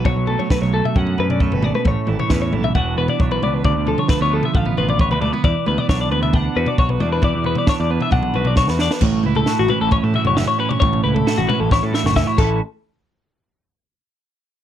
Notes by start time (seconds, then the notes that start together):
Already playing: B2 B3 F#4
0.05 B1 F#3 C#5, kick, floor tom
0.16 B1
0.27 A3 A4, floor tom
0.39 C#5, floor tom
0.50 F#3 B4, kick, snare
0.62 B1 C#5
0.74 A3 A4
0.85 E5, floor tom
0.96 F#2 C#4 F#5, kick, floor tom
1.07 floor tom
1.18 F#2 B4, floor tom
1.30 D5, floor tom
1.40 A3 C#5, kick
1.52 G#1 B4, floor tom
1.62 B2 D5, floor tom, mid tom
1.75 B4, mid tom
1.85 A1 A2 C#5, kick, floor tom
2.07 G#1 E3 A4, mid tom
2.19 C#5, floor tom
2.30 E2 C#4 B4, kick, snare
2.42 C#5
2.52 B1 E3 A4, mid tom
2.64 E5, floor tom
2.75 E1 E3 B3 D4 F#4 F#5, kick, floor tom
2.96 E1 B3 B4
3.08 D5, floor tom
3.20 B1 D4 C#5, kick
3.31 B4, floor tom
3.42 C#2 B3 D5, floor tom, mid tom
3.54 B4
3.64 D2 D3 D5, kick, floor tom
3.76 D2
3.87 F3 A4, floor tom
3.98 C#5, floor tom
4.08 A3 B4, kick, snare
4.21 D2 B3 C#5
4.32 F3 A4
4.43 E5, floor tom
4.53 A1 A3 F5, kick, floor tom
4.66 B3, floor tom
4.78 A1 F4 B4, floor tom
4.89 D5, floor tom
4.99 B4 C#5, kick
5.11 D2 B4, floor tom
5.21 A3 D5, floor tom, mid tom
5.33 B3 B4, mid tom
5.44 E2 E3 D5, kick, floor tom
5.66 D2 B3 B4, mid tom
5.78 D5, floor tom
5.89 B1 D4 C#5, kick, snare
6.01 D5
6.11 D2 B3 B4, mid tom
6.23 E5, floor tom
6.33 D4 F#5, kick, floor tom
6.56 E2 F#4 B4
6.66 D5, floor tom
6.78 B1 F#4 C#5, kick
6.89 B4, floor tom
7.00 E2 D4 D5, floor tom, mid tom
7.13 B4
7.22 E2 E3 D5, kick, floor tom
7.35 E2
7.44 B3 B4, floor tom
7.55 D5, floor tom
7.67 D4 C#5, kick, snare
7.80 E2 D5
7.91 B3 B4
8.00 E5, floor tom
8.11 B1 D4 F#5, kick, floor tom
8.23 floor tom
8.34 B1 F#4 B4, floor tom
8.45 D5, floor tom
8.56 F#4 C#5, kick, snare
8.68 E2 B4, snare
8.79 D4 D5, snare
8.91 B4, snare
9.01 A1 A2 C#5, kick, floor tom, crash
9.12 floor tom
9.23 C#2 E4 B4, mid tom
9.35 A4, floor tom
9.46 F#4, snare
9.59 A1 F#4
9.68 E3 C#4 B4, floor tom, mid tom
9.81 A1 A4
9.91 C#4 C#5, kick, floor tom
10.03 A2 E4 A4
10.14 A2 F#4 E5, floor tom
10.25 F#1 C#5, floor tom
10.36 C#4 E5, snare
10.47 E4 C#5
10.58 C#4 B4
10.69 C#5, floor tom
10.80 A1 A2 C#5, kick, floor tom
10.93 floor tom
11.04 C#2 E4 B4
11.14 A4, floor tom
11.27 F#4, snare
11.38 A1 F#4, floor tom
11.48 E3 C#4 B4, floor tom, mid tom
11.60 A1 A4
11.71 E4 C#5, kick, snare
11.83 A2 A4
11.92 A2 F#4 E5, snare
12.04 F#1 C#5, snare
12.16 C#4 E5, kick, snare
12.27 E4 C#5
12.38 A1 A2 E3 C#4 A4, kick, crash
12.42 E4 F#4